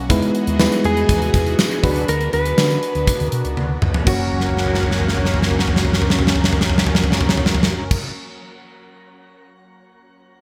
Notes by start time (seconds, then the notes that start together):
Already playing: C#4 F#4 A#4
0.09 E2 E3 G#3 B3 D#4 E4 G#4 B4 D#5, kick, closed hi-hat
0.22 closed hi-hat
0.35 closed hi-hat
0.47 D#2, closed hi-hat
0.59 G3 B3 D#4 E4 B4, snare, tambourine
0.65 G#3
0.72 closed hi-hat
0.84 E2 G#4, closed hi-hat
0.97 closed hi-hat
1.09 D#2 E3 D#4 G#4, kick, closed hi-hat
1.22 closed hi-hat
1.34 E2, kick, closed hi-hat
1.47 closed hi-hat
1.59 snare, tambourine
1.71 closed hi-hat
1.83 D2 F#3 D4 F#4 B4, kick, open hi-hat
1.96 closed hi-hat
2.08 D2 A#4, closed hi-hat
2.21 closed hi-hat
2.33 D2 B4, closed hi-hat
2.46 closed hi-hat
2.57 D3 D4 F#4 B4, snare, tambourine
2.70 closed hi-hat
2.83 closed hi-hat
2.95 D2, closed hi-hat
3.07 kick, closed hi-hat
3.20 D2, closed hi-hat
3.27 A#4
3.32 B2, closed hi-hat
3.45 C#2, closed hi-hat
3.57 D2, high tom
3.82 C#2, mid tom
3.94 floor tom
4.04 F#1 F#3 A#3 C#4 F#4 A#4, kick, crash
4.09 C#5
4.32 floor tom
4.40 snare
4.49 floor tom
4.57 snare
4.66 floor tom
4.74 snare
4.83 floor tom
4.91 snare
5.00 floor tom
5.08 snare
5.17 floor tom
5.25 snare
5.34 floor tom
5.42 snare
5.51 floor tom
5.59 snare
5.68 floor tom
5.76 snare
5.85 floor tom
5.93 snare
6.02 floor tom
6.10 snare
6.19 floor tom
6.27 snare
6.36 floor tom
6.44 snare
6.53 floor tom
6.61 snare
6.70 floor tom
6.78 snare
6.86 floor tom
6.95 snare
7.04 floor tom
7.12 snare
7.21 floor tom
7.29 snare
7.37 floor tom
7.46 snare
7.55 floor tom
7.63 snare
7.91 kick, crash